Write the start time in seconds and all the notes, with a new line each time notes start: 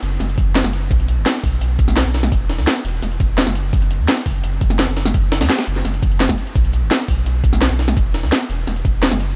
0.02 F#1, closed hi-hat, open hi-hat
0.20 F#1, snare, closed hi-hat
0.29 closed hi-hat
0.38 F#1, kick, closed hi-hat
0.55 snare, closed hi-hat
0.64 F#1, snare
0.73 closed hi-hat, open hi-hat
0.91 B1, kick, closed hi-hat
1.00 closed hi-hat
1.08 closed hi-hat
1.17 F#1
1.26 snare, closed hi-hat
1.35 snare
1.44 B1, kick, open hi-hat
1.61 B1, closed hi-hat
1.79 B1, kick, closed hi-hat
1.88 snare
1.96 snare, closed hi-hat
2.05 B1
2.14 snare, closed hi-hat, open hi-hat
2.23 snare
2.32 E1, kick, closed hi-hat
2.49 snare, closed hi-hat
2.58 E2, snare
2.67 snare, closed hi-hat
2.85 E1, closed hi-hat, open hi-hat
3.02 E1, snare, closed hi-hat
3.11 closed hi-hat
3.20 E1, kick, closed hi-hat
3.38 snare, closed hi-hat
3.47 F#1, snare
3.55 closed hi-hat, open hi-hat
3.73 F#1, kick, closed hi-hat
3.82 closed hi-hat
3.91 closed hi-hat
3.99 F#2
4.08 snare, closed hi-hat
4.17 snare
4.26 F#1, kick, open hi-hat
4.44 F#1, closed hi-hat
4.61 F#1, kick, closed hi-hat
4.70 snare
4.79 snare, closed hi-hat
4.88 F#1
4.97 snare, closed hi-hat, open hi-hat
5.06 snare
5.14 F#1, kick, closed hi-hat
5.32 snare, closed hi-hat
5.41 F#2, snare, closed hi-hat
5.50 snare, closed hi-hat
5.59 snare, closed hi-hat
5.67 F#1, closed hi-hat, open hi-hat
5.76 snare
5.85 F#1, snare, closed hi-hat
5.94 closed hi-hat
6.02 F#1, kick, closed hi-hat
6.12 closed hi-hat
6.20 snare, closed hi-hat
6.29 F#1, kick, snare, closed hi-hat
6.38 closed hi-hat, open hi-hat
6.47 closed hi-hat
6.56 B1, kick, closed hi-hat
6.65 closed hi-hat
6.73 closed hi-hat
6.82 F#1
6.91 snare, closed hi-hat
7.00 snare
7.08 B1, kick, open hi-hat
7.26 B1, closed hi-hat
7.44 B1, kick, closed hi-hat
7.53 snare
7.61 snare, closed hi-hat
7.70 B1
7.79 snare, closed hi-hat, open hi-hat
7.88 snare
7.97 E1, kick, closed hi-hat
8.14 snare, closed hi-hat
8.23 E2, snare
8.32 snare, closed hi-hat
8.49 E1, closed hi-hat, open hi-hat
8.67 E1, snare, closed hi-hat
8.76 closed hi-hat
8.85 E1, kick, closed hi-hat
9.03 snare, closed hi-hat
9.11 F#1, snare
9.20 closed hi-hat, open hi-hat